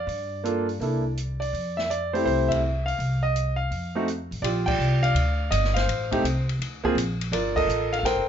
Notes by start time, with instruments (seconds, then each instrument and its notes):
Already playing: grand piano D5
0.07 upright bass G2, open hi-hat
0.44 grand piano A#3 D4 F4 A4, closed hi-hat
0.69 open hi-hat
0.80 upright bass C2, grand piano A#3 D4 E4 A4, open hi-hat
1.17 closed hi-hat
1.40 grand piano D5, open hi-hat
1.53 upright bass F2, open hi-hat
1.77 grand piano E5, snare
1.90 grand piano D5, closed hi-hat
2.13 grand piano A3 C4 E4 G4 C5, open hi-hat
2.25 upright bass C2, grand piano C5, open hi-hat
2.48 grand piano E5, kick, ride
2.86 grand piano F5, open hi-hat
2.99 upright bass C2, open hi-hat
3.23 grand piano D#5
3.36 closed hi-hat
3.56 grand piano F5
3.71 upright bass F2, open hi-hat
3.95 grand piano A3 C4 D#4 F#4
4.08 closed hi-hat
4.31 upright bass A1, open hi-hat
4.42 upright bass A#1, grand piano F4 G4 D5, ride
4.66 grand piano D5 G5, kick, crash
4.78 upright bass C2, hi-hat pedal
5.03 grand piano D5 F5, ride
5.14 upright bass D2, ride
5.51 upright bass G1, grand piano D#5, hi-hat pedal, ride
5.65 snare
5.74 grand piano C5 F5, snare, ride
5.87 upright bass A1, ride
6.11 grand piano A3 C4 D#4 G4, kick, ride
6.23 upright bass C2, hi-hat pedal, ride
6.49 ride
6.59 upright bass D2, ride
6.84 grand piano A#3 C4 F4 G#4, kick
6.95 upright bass A#1, hi-hat pedal, ride
7.21 ride
7.32 upright bass G1, grand piano F4 A#4 D5, ride
7.56 grand piano A4 A#4 D#5, kick, crash
7.67 upright bass A1, hi-hat pedal
7.93 grand piano F5, ride
7.99 grand piano F5
8.03 upright bass A#1, grand piano A#4 C5 G5, snare, ride
8.15 upright bass G1